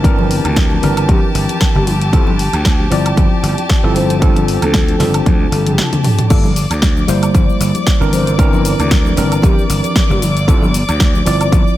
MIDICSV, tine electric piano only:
0, 0, Header, 1, 2, 480
1, 0, Start_track
1, 0, Tempo, 521739
1, 40, Time_signature, 4, 2, 24, 8
1, 10830, End_track
2, 0, Start_track
2, 0, Title_t, "Tine electric piano"
2, 0, Program_c, 0, 4
2, 25, Note_on_c, 0, 52, 84
2, 32, Note_on_c, 0, 60, 74
2, 39, Note_on_c, 0, 62, 78
2, 47, Note_on_c, 0, 70, 94
2, 726, Note_off_c, 0, 52, 0
2, 730, Note_off_c, 0, 60, 0
2, 733, Note_off_c, 0, 62, 0
2, 737, Note_off_c, 0, 70, 0
2, 751, Note_on_c, 0, 52, 72
2, 758, Note_on_c, 0, 60, 68
2, 764, Note_on_c, 0, 62, 68
2, 771, Note_on_c, 0, 70, 81
2, 1702, Note_off_c, 0, 52, 0
2, 1706, Note_off_c, 0, 60, 0
2, 1709, Note_off_c, 0, 62, 0
2, 1712, Note_off_c, 0, 70, 0
2, 1954, Note_on_c, 0, 53, 74
2, 1959, Note_on_c, 0, 60, 70
2, 1963, Note_on_c, 0, 64, 72
2, 1964, Note_on_c, 0, 69, 89
2, 2117, Note_off_c, 0, 53, 0
2, 2120, Note_off_c, 0, 60, 0
2, 2122, Note_off_c, 0, 64, 0
2, 2122, Note_off_c, 0, 69, 0
2, 2669, Note_on_c, 0, 53, 87
2, 2674, Note_on_c, 0, 60, 78
2, 2681, Note_on_c, 0, 64, 78
2, 2688, Note_on_c, 0, 74, 89
2, 3494, Note_off_c, 0, 53, 0
2, 3496, Note_off_c, 0, 60, 0
2, 3500, Note_off_c, 0, 64, 0
2, 3503, Note_off_c, 0, 74, 0
2, 3527, Note_on_c, 0, 53, 87
2, 3529, Note_on_c, 0, 60, 76
2, 3532, Note_on_c, 0, 64, 80
2, 3534, Note_on_c, 0, 69, 94
2, 3851, Note_off_c, 0, 53, 0
2, 3852, Note_off_c, 0, 60, 0
2, 3854, Note_off_c, 0, 64, 0
2, 3855, Note_off_c, 0, 69, 0
2, 3865, Note_on_c, 0, 53, 90
2, 3872, Note_on_c, 0, 60, 79
2, 3878, Note_on_c, 0, 62, 76
2, 3883, Note_on_c, 0, 69, 93
2, 4566, Note_off_c, 0, 53, 0
2, 4570, Note_off_c, 0, 60, 0
2, 4572, Note_off_c, 0, 62, 0
2, 4575, Note_off_c, 0, 69, 0
2, 4586, Note_on_c, 0, 53, 71
2, 4594, Note_on_c, 0, 60, 69
2, 4600, Note_on_c, 0, 62, 68
2, 4604, Note_on_c, 0, 69, 84
2, 5767, Note_off_c, 0, 53, 0
2, 5770, Note_off_c, 0, 60, 0
2, 5774, Note_off_c, 0, 62, 0
2, 5776, Note_off_c, 0, 69, 0
2, 5795, Note_on_c, 0, 55, 75
2, 5798, Note_on_c, 0, 58, 70
2, 5800, Note_on_c, 0, 64, 71
2, 5803, Note_on_c, 0, 69, 85
2, 5958, Note_off_c, 0, 55, 0
2, 5959, Note_off_c, 0, 58, 0
2, 5960, Note_off_c, 0, 64, 0
2, 5962, Note_off_c, 0, 69, 0
2, 6507, Note_on_c, 0, 55, 82
2, 6511, Note_on_c, 0, 58, 75
2, 6519, Note_on_c, 0, 64, 80
2, 6525, Note_on_c, 0, 72, 94
2, 7333, Note_off_c, 0, 55, 0
2, 7335, Note_off_c, 0, 58, 0
2, 7339, Note_off_c, 0, 64, 0
2, 7342, Note_off_c, 0, 72, 0
2, 7359, Note_on_c, 0, 52, 85
2, 7366, Note_on_c, 0, 60, 75
2, 7368, Note_on_c, 0, 62, 78
2, 7369, Note_on_c, 0, 70, 97
2, 7688, Note_off_c, 0, 52, 0
2, 7691, Note_off_c, 0, 60, 0
2, 7692, Note_off_c, 0, 62, 0
2, 7692, Note_off_c, 0, 70, 0
2, 7706, Note_on_c, 0, 52, 91
2, 7710, Note_on_c, 0, 60, 79
2, 7716, Note_on_c, 0, 62, 75
2, 7722, Note_on_c, 0, 70, 101
2, 8406, Note_off_c, 0, 52, 0
2, 8409, Note_off_c, 0, 60, 0
2, 8411, Note_off_c, 0, 62, 0
2, 8415, Note_off_c, 0, 70, 0
2, 8425, Note_on_c, 0, 52, 73
2, 8434, Note_on_c, 0, 60, 71
2, 8440, Note_on_c, 0, 62, 70
2, 8442, Note_on_c, 0, 70, 82
2, 9379, Note_off_c, 0, 52, 0
2, 9384, Note_off_c, 0, 60, 0
2, 9386, Note_off_c, 0, 62, 0
2, 9388, Note_off_c, 0, 70, 0
2, 9636, Note_on_c, 0, 53, 81
2, 9642, Note_on_c, 0, 60, 75
2, 9644, Note_on_c, 0, 64, 74
2, 9645, Note_on_c, 0, 69, 82
2, 9798, Note_off_c, 0, 53, 0
2, 9801, Note_off_c, 0, 60, 0
2, 9802, Note_off_c, 0, 64, 0
2, 9803, Note_off_c, 0, 69, 0
2, 10350, Note_on_c, 0, 53, 87
2, 10358, Note_on_c, 0, 60, 77
2, 10364, Note_on_c, 0, 64, 79
2, 10370, Note_on_c, 0, 74, 93
2, 10830, Note_off_c, 0, 53, 0
2, 10830, Note_off_c, 0, 60, 0
2, 10830, Note_off_c, 0, 64, 0
2, 10830, Note_off_c, 0, 74, 0
2, 10830, End_track
0, 0, End_of_file